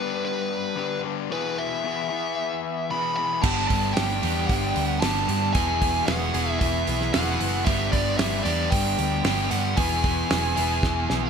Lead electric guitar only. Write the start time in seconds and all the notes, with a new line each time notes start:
Already playing: B4
0.25 B4
1.32 B4
1.58 E5
2.91 B5
3.17 B5
3.42 A5
3.68 A5
3.94 G5
4.47 G5
4.88 F#5
5.00 A5
5.53 G#5
6.07 F#5
6.51 E5
6.59 E5
7.13 F#5
7.65 E5
7.92 D5
8.18 E5
8.44 D5
8.71 G5
9.51 F#5
9.78 G#5